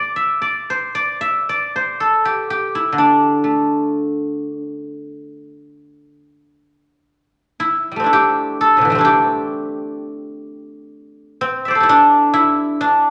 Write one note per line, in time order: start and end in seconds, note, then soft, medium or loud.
0.00 0.41 D5 medium
0.16 1.21 E5 medium
0.42 0.94 D5 medium
0.70 1.75 C5 medium
0.95 1.49 D5 medium
1.21 2.93 E5 medium
1.49 3.34 D5 medium
1.76 3.74 C5 medium
2.00 4.20 A4 medium
2.25 2.50 G4 medium
2.50 4.86 G4 medium
2.75 5.36 E4 medium
2.92 6.02 D3 soft
2.98 4.53 D4 medium
3.44 5.49 A3 soft
4.53 4.90 C#4 medium
4.90 6.01 C4 medium
7.60 8.06 E4 medium
7.92 8.67 G3 soft
7.96 8.91 A3 soft
7.96 8.95 C4 soft
8.04 8.98 D4 soft
8.04 9.00 E4 medium
8.13 9.04 G4 medium
8.61 10.80 A4 medium
8.77 8.96 A2 soft
8.77 9.04 C3 soft
8.81 9.01 D3 soft
8.81 9.04 E3 soft
8.90 11.81 G3 soft
8.90 12.24 A3 medium
8.95 11.41 C4 medium
8.95 11.78 D4 medium
9.01 11.62 E4 medium
9.01 11.40 G4 medium
11.41 13.10 C4 medium
11.65 13.10 D5 soft
11.65 13.10 E5 soft
11.71 13.10 C5 soft
11.75 13.10 A4 medium
11.80 12.33 E4 medium
11.80 13.10 G4 medium
11.89 12.80 D4 medium
12.34 13.10 E4 medium
12.81 13.10 D4 medium